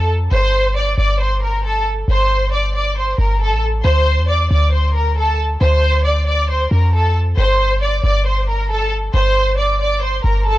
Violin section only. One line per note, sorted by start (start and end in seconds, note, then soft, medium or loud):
0.31 0.73 C5 loud
0.31 0.73 C6 medium
0.76 0.95 D5 medium
0.76 0.96 D6 medium
0.98 1.17 D5 medium
0.98 1.18 D6 medium
1.20 1.39 C5 medium
1.20 1.40 C6 medium
1.43 1.62 A#4 medium
1.43 1.62 A#5 medium
1.64 1.83 A4 loud
1.64 1.84 A5 medium
2.08 2.50 C5 loud
2.08 2.50 C6 medium
2.52 2.72 D5 medium
2.52 2.72 D6 medium
2.74 2.94 D5 medium
2.74 2.94 D6 medium
2.96 3.16 C5 medium
2.96 3.16 C6 medium
3.18 3.38 A#4 medium
3.18 3.38 A#5 medium
3.40 3.60 A4 loud
3.40 3.60 A5 medium
3.84 4.26 C5 loud
3.84 4.26 C6 loud
4.29 4.48 D5 medium
4.29 4.49 D6 medium
4.51 4.70 D5 medium
4.51 4.71 D6 medium
4.73 4.92 C5 medium
4.73 4.93 C6 medium
4.95 5.14 A#4 medium
4.95 5.15 A#5 medium
5.17 5.36 A4 medium
5.17 5.37 A5 medium
5.61 6.03 C5 loud
5.61 6.03 C6 medium
6.05 6.24 D5 medium
6.05 6.25 D6 medium
6.27 6.47 D5 medium
6.27 6.47 D6 medium
6.49 6.69 C5 medium
6.49 6.69 C6 medium
6.71 6.91 A#4 medium
6.71 6.91 A#5 medium
6.94 7.13 A4 loud
6.94 7.13 A5 medium
7.37 7.79 C5 loud
7.37 7.79 C6 medium
7.82 8.01 D5 medium
7.82 8.02 D6 medium
8.04 8.23 D5 loud
8.04 8.24 D6 medium
8.26 8.45 C5 medium
8.26 8.46 C6 medium
8.48 8.68 A#4 medium
8.48 8.68 A#5 medium
8.70 8.89 A4 loud
8.70 8.90 A5 medium
9.14 9.56 C5 loud
9.14 9.56 C6 medium
9.58 9.77 D5 medium
9.58 9.78 D6 medium
9.80 10.00 D5 medium
9.80 10.00 D6 medium
10.02 10.22 C5 medium
10.02 10.22 C6 medium
10.24 10.43 A#4 medium
10.24 10.44 A#5 medium
10.46 10.58 A4 loud
10.46 10.58 A5 medium